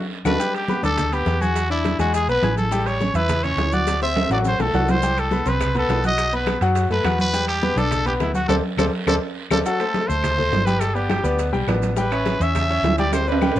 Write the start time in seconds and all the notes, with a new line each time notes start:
0.25 D2 D4 F#4 A4 B4, low bongo, high conga, high timbale, long guiro, claves, maracas
0.40 G3 G4 G5, high bongo, high conga, high timbale, long guiro, maracas
0.54 G4, high bongo, high conga, high timbale, maracas
0.68 B3 B4 B5, high bongo, high conga, short guiro, maracas
0.83 D2 D4 A4 D5 D6, high bongo, high conga, high timbale, short guiro, maracas
0.98 high bongo, high conga, low conga, high timbale, maracas
1.12 B3 G4 B4 B5, high conga, high timbale, maracas
1.26 E2, high bongo, low bongo, high conga, high timbale, short guiro, maracas
1.41 F#4 G#4 G#5 G#6, high bongo, high conga, short guiro, maracas
1.55 high bongo, high conga, high timbale, long guiro, maracas
1.70 D4 E4 D5 D6, high bongo, high conga, maracas
1.84 high bongo, high conga, high timbale, short guiro, maracas
1.99 E2 G#3 F#4 G#4 G#5, high timbale, short guiro, maracas
2.13 G#4, high bongo, high conga, high timbale, long guiro, maracas
2.28 B1 B3 B4 B5, high conga, maracas
2.42 A1 G#4 G#5 G#6, high bongo, low bongo, high conga, high timbale, low timbale, short guiro, maracas
2.56 A4, high bongo, high conga, short guiro, maracas
2.71 G3 G4 G5, high bongo, high timbale, long guiro, maracas
2.86 C#5, high bongo, high conga, high timbale, maracas
3.00 C#4 C#5 C#6, high bongo, high conga, short guiro, maracas
3.14 E2 E4 B4 E5 E6, high bongo, high conga, high timbale, short guiro, maracas
3.29 high bongo, high conga, low conga, high timbale, long guiro, maracas
3.43 C#4 C#5 C#6, high conga, low conga, high timbale, maracas
3.57 D2, high bongo, low bongo, high conga, high timbale, low timbale, short guiro, maracas
3.72 F#4 D5 F#5 F#6, high bongo, high conga, short guiro, maracas
3.87 high bongo, high conga, high timbale, long guiro, maracas
4.02 C4 C5 E5 C6, high bongo, high conga, maracas
4.16 high conga, high timbale, short guiro, maracas
4.30 A1 F#3 F#4 D5 F#5, low bongo, high timbale, short guiro, maracas
4.45 C5, low bongo, high conga, long guiro, maracas
4.58 B1 A3 A4 A5, low bongo, high conga, low timbale, maracas
4.73 C2 F#4 F#5 F#6, high conga, low timbale, short guiro, maracas
4.88 C5, low bongo, high conga, low timbale, short guiro, maracas
5.02 G3 G4 G5, high bongo, high conga, high timbale, long guiro, maracas
5.17 A4, high bongo, high conga, high timbale, claves, maracas
5.31 B3 B4 B5, high bongo, high conga, short guiro, maracas
5.46 C2 C4 B4 C5 C6, high bongo, high conga, high timbale, short guiro, maracas
5.60 high bongo, high conga, low conga, high timbale, long guiro, claves, maracas
5.75 B3 A4 B4 B5, high conga, low conga, high timbale, maracas
5.89 B1, high bongo, low bongo, high conga, high timbale, low timbale, short guiro, maracas
6.03 F#4 D#5 F#5 F#6, high bongo, high conga, short guiro, maracas
6.18 high bongo, high conga, high timbale, long guiro, claves, maracas
6.32 B3 B4 B5, high bongo, high conga, maracas
6.47 high bongo, high conga, high timbale, short guiro, claves, maracas
6.61 F#2 F#3 F#4 F#5, high bongo, high timbale, short guiro, maracas
6.75 high bongo, high conga, high timbale, long guiro, maracas
6.89 F#2 A3 A4 B4 A5, high conga, maracas
7.04 E2 F#4 F#5 F#6, high bongo, low bongo, high conga, high timbale, short guiro, claves, maracas
7.19 B4, high bongo, high conga, short guiro, maracas
7.33 G3 G4 G5, high bongo, high conga, high timbale, long guiro, maracas
7.48 G4, high bongo, high conga, high timbale, claves, maracas
7.62 B3 B4 B5, high bongo, high conga, short guiro, maracas
7.76 B1 D4 A4 D5 D6, high bongo, high conga, high timbale, short guiro, maracas
7.91 high bongo, high conga, low conga, high timbale, claves, maracas
8.05 B3 G4 B4 B5, high conga, low conga, high timbale, maracas
8.20 D2 E4, high bongo, low bongo, high conga, high timbale, short guiro, maracas
8.34 F#4 F#5 F#6, high bongo, high conga, short guiro, maracas
8.48 D2 A4 C5 D5, high bongo, high conga, high timbale, long guiro, claves, maracas
8.77 D2 A4 C5 D5, high bongo, high conga, high timbale, long guiro, claves, maracas
9.07 D2 A4 C5 D5, high bongo, high conga, high timbale, long guiro, claves, maracas
9.51 D2 A4 C5 D5, high bongo, high conga, high timbale, long guiro, claves, maracas
9.65 F#3 F#4 A4 F#5, high bongo, high conga, long guiro, maracas
9.80 A3 A4 C5, high bongo, high conga, high timbale, claves, maracas
9.94 high bongo, high conga, high timbale, low timbale, short guiro, maracas
10.07 D2 A3 A4 C5, short guiro, maracas
10.23 high bongo, high conga, low conga, high timbale, long guiro, claves, maracas
10.38 A3 A4 C5, high bongo, high conga, low conga, maracas
10.52 G1, high bongo, low bongo, high conga, high timbale, low timbale, short guiro, maracas
10.65 G3 G4 B4 G5, high bongo, high conga, high timbale, short guiro, maracas
10.80 A4, high bongo, high conga, high timbale, long guiro, claves, maracas
10.94 B3 G4 B4 D5, high bongo, high conga, maracas
11.09 G3 G4 G5, high bongo, high conga, high timbale, low timbale, short guiro, claves, maracas
11.24 D2 B3 B4 D5, short guiro, maracas
11.38 high bongo, high conga, high timbale, long guiro, maracas
11.53 B1 G3 G4 G5, high bongo, high conga, maracas
11.67 A1 B3 B4 D5, high bongo, low bongo, high conga, high timbale, low timbale, short guiro, claves, maracas
11.82 high bongo, high conga, high timbale, short guiro, maracas
11.96 G3 G4 B4 G5, high bongo, high conga, long guiro, maracas
12.11 C#4 C#5 E5, high bongo, high conga, high timbale, claves, maracas
12.25 high bongo, high conga, high timbale, low timbale, short guiro, maracas
12.40 E2 C#4 C#5 E5, short guiro, maracas
12.55 high bongo, high conga, low conga, high timbale, long guiro, claves, maracas
12.69 C#4 C#5 E5, high bongo, high conga, maracas
12.82 D2, high bongo, low bongo, high conga, high timbale, low timbale, short guiro, maracas
12.98 G3 G4 D5 G5, high bongo, high conga, high timbale, short guiro, maracas
13.12 C5, high bongo, high conga, high timbale, long guiro, claves, maracas
13.27 C4 B4 C5 D5, high bongo, high conga, maracas
13.32 high timbale
13.41 G3 G4 G5, high bongo, high conga, high timbale, short guiro, claves, maracas
13.51 A1, high timbale
13.56 C4, high bongo, short guiro, maracas